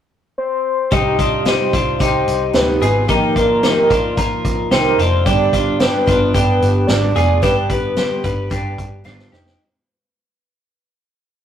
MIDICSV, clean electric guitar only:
0, 0, Header, 1, 2, 480
1, 0, Start_track
1, 0, Tempo, 542005
1, 815, Time_signature, 4, 2, 24, 8
1, 10132, End_track
2, 0, Start_track
2, 0, Title_t, "Clean electric guitar"
2, 0, Program_c, 0, 27
2, 814, Note_on_c, 0, 67, 84
2, 822, Note_on_c, 0, 63, 72
2, 1050, Note_off_c, 0, 67, 0
2, 1053, Note_on_c, 0, 65, 78
2, 1058, Note_off_c, 0, 63, 0
2, 1062, Note_on_c, 0, 62, 61
2, 1291, Note_off_c, 0, 65, 0
2, 1294, Note_on_c, 0, 67, 70
2, 1298, Note_off_c, 0, 62, 0
2, 1302, Note_on_c, 0, 63, 53
2, 1531, Note_off_c, 0, 67, 0
2, 1535, Note_on_c, 0, 65, 70
2, 1538, Note_off_c, 0, 63, 0
2, 1542, Note_on_c, 0, 62, 54
2, 1770, Note_off_c, 0, 65, 0
2, 1773, Note_on_c, 0, 67, 75
2, 1777, Note_off_c, 0, 62, 0
2, 1781, Note_on_c, 0, 63, 58
2, 2458, Note_off_c, 0, 67, 0
2, 2462, Note_off_c, 0, 63, 0
2, 2495, Note_on_c, 0, 68, 74
2, 2502, Note_on_c, 0, 65, 58
2, 2731, Note_off_c, 0, 68, 0
2, 2734, Note_on_c, 0, 67, 85
2, 2738, Note_off_c, 0, 65, 0
2, 2741, Note_on_c, 0, 63, 64
2, 2972, Note_off_c, 0, 67, 0
2, 2976, Note_on_c, 0, 65, 65
2, 2978, Note_off_c, 0, 63, 0
2, 2983, Note_on_c, 0, 62, 54
2, 3215, Note_off_c, 0, 65, 0
2, 3219, Note_off_c, 0, 62, 0
2, 3219, Note_on_c, 0, 67, 69
2, 3227, Note_on_c, 0, 63, 52
2, 3453, Note_off_c, 0, 67, 0
2, 3456, Note_on_c, 0, 65, 69
2, 3461, Note_off_c, 0, 63, 0
2, 3464, Note_on_c, 0, 62, 52
2, 3693, Note_off_c, 0, 65, 0
2, 3698, Note_on_c, 0, 70, 78
2, 3700, Note_off_c, 0, 62, 0
2, 3704, Note_on_c, 0, 65, 58
2, 4148, Note_off_c, 0, 70, 0
2, 4151, Note_off_c, 0, 65, 0
2, 4175, Note_on_c, 0, 67, 69
2, 4183, Note_on_c, 0, 63, 55
2, 4416, Note_off_c, 0, 67, 0
2, 4419, Note_on_c, 0, 65, 77
2, 4420, Note_off_c, 0, 63, 0
2, 4425, Note_on_c, 0, 62, 62
2, 4655, Note_off_c, 0, 62, 0
2, 4655, Note_off_c, 0, 65, 0
2, 4658, Note_on_c, 0, 67, 89
2, 4666, Note_on_c, 0, 62, 71
2, 4893, Note_off_c, 0, 62, 0
2, 4895, Note_off_c, 0, 67, 0
2, 4898, Note_on_c, 0, 65, 79
2, 4904, Note_on_c, 0, 62, 57
2, 5134, Note_off_c, 0, 62, 0
2, 5135, Note_off_c, 0, 65, 0
2, 5138, Note_on_c, 0, 67, 69
2, 5144, Note_on_c, 0, 62, 55
2, 5374, Note_off_c, 0, 67, 0
2, 5375, Note_off_c, 0, 62, 0
2, 5378, Note_on_c, 0, 65, 72
2, 5385, Note_on_c, 0, 62, 53
2, 5616, Note_off_c, 0, 62, 0
2, 5617, Note_off_c, 0, 65, 0
2, 5620, Note_on_c, 0, 67, 77
2, 5627, Note_on_c, 0, 62, 59
2, 6304, Note_off_c, 0, 67, 0
2, 6307, Note_off_c, 0, 62, 0
2, 6339, Note_on_c, 0, 68, 74
2, 6345, Note_on_c, 0, 65, 56
2, 6576, Note_off_c, 0, 68, 0
2, 6580, Note_on_c, 0, 67, 87
2, 6582, Note_off_c, 0, 65, 0
2, 6587, Note_on_c, 0, 62, 69
2, 6816, Note_off_c, 0, 67, 0
2, 6820, Note_on_c, 0, 71, 76
2, 6823, Note_off_c, 0, 62, 0
2, 6827, Note_on_c, 0, 67, 56
2, 7056, Note_off_c, 0, 67, 0
2, 7056, Note_off_c, 0, 71, 0
2, 7060, Note_on_c, 0, 72, 66
2, 7066, Note_on_c, 0, 67, 56
2, 7293, Note_off_c, 0, 67, 0
2, 7293, Note_off_c, 0, 72, 0
2, 7297, Note_on_c, 0, 71, 70
2, 7304, Note_on_c, 0, 67, 54
2, 7524, Note_off_c, 0, 67, 0
2, 7535, Note_on_c, 0, 67, 71
2, 7538, Note_off_c, 0, 71, 0
2, 7543, Note_on_c, 0, 62, 56
2, 7988, Note_off_c, 0, 67, 0
2, 7993, Note_off_c, 0, 62, 0
2, 8015, Note_on_c, 0, 65, 66
2, 8024, Note_on_c, 0, 62, 54
2, 8250, Note_off_c, 0, 65, 0
2, 8254, Note_on_c, 0, 67, 75
2, 8258, Note_off_c, 0, 62, 0
2, 8261, Note_on_c, 0, 63, 58
2, 8496, Note_off_c, 0, 67, 0
2, 8500, Note_off_c, 0, 63, 0
2, 10132, End_track
0, 0, End_of_file